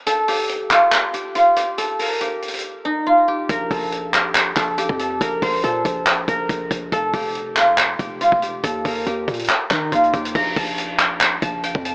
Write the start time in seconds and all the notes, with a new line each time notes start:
0.07 A4, closed hi-hat
0.28 G4, open hi-hat
0.49 closed hi-hat
0.71 F4, clap, closed hi-hat
0.92 clap, closed hi-hat
1.14 G4, closed hi-hat
1.35 F4, closed hi-hat
1.56 G4, closed hi-hat
1.78 A4, closed hi-hat
1.99 A#4, open hi-hat
2.21 G4, closed hi-hat
2.42 closed hi-hat
2.48 closed hi-hat
2.54 closed hi-hat
2.59 closed hi-hat
2.85 D#4
3.07 F4
3.28 G4
3.49 A#1 A#4, kick, closed hi-hat
3.71 A#1 A4, kick, open hi-hat
3.92 closed hi-hat
4.14 G4, clap, closed hi-hat
4.35 clap, closed hi-hat
4.57 A#1 A4, kick, clap, closed hi-hat
4.78 G4, closed hi-hat
4.89 F2, kick
4.99 A4, closed hi-hat
5.21 A#1 A#4, kick, closed hi-hat
5.42 A#1 C5, kick, open hi-hat
5.64 A#2 A4, closed hi-hat
5.85 A#1, kick, closed hi-hat
6.07 clap, closed hi-hat
6.28 A#1 A#4, kick, closed hi-hat
6.49 A#1, kick, closed hi-hat
6.71 A#1, kick, closed hi-hat
6.92 F1 A4, kick, closed hi-hat
7.14 F1 G4, kick, open hi-hat
7.35 closed hi-hat
7.56 F4, clap, closed hi-hat
7.78 clap, closed hi-hat
7.99 F1 G4, kick, closed hi-hat
8.21 F4, closed hi-hat
8.32 F1, kick
8.42 G4, closed hi-hat
8.64 D#2 A4, kick, closed hi-hat
8.85 D#2 A#4, kick, open hi-hat
9.06 D#2 G4, closed hi-hat
9.28 A#2, kick, closed hi-hat
9.34 closed hi-hat
9.39 closed hi-hat
9.44 closed hi-hat
9.49 clap, closed hi-hat
9.71 D#3 D#4, kick, clap, closed hi-hat
9.92 D#2 F4, kick, closed hi-hat
10.04 closed hi-hat
10.14 D#2 G4, kick, closed hi-hat
10.25 closed hi-hat
10.35 A#1 A#5, kick, crash
10.56 A#1 A5, kick, open hi-hat
10.78 closed hi-hat
10.99 G5, clap, closed hi-hat
11.21 clap, closed hi-hat
11.42 A#1 A5, kick, closed hi-hat
11.63 G5, closed hi-hat
11.75 F2, kick
11.85 A5, closed hi-hat